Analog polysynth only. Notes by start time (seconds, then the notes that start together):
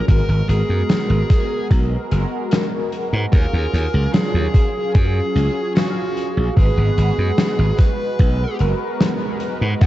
Already playing: F#3 C#4 G#4
0.07 G#3 B3 F#4 A#4
2.11 G#3 B3 F#4 A#4
2.51 G#3 B3 F#4 A#4
3.31 F#3 C#4 F4 G#4
5.35 F#3 C#4 F4 G#4
5.75 F#3 C#4 G#4 F5
6.56 G#3 B3 F#4 B4
8.59 G#3 B3 F#4 A#4
9.00 G#3 B3 F#4 A#4
9.80 F3 F#3 C#4 G#4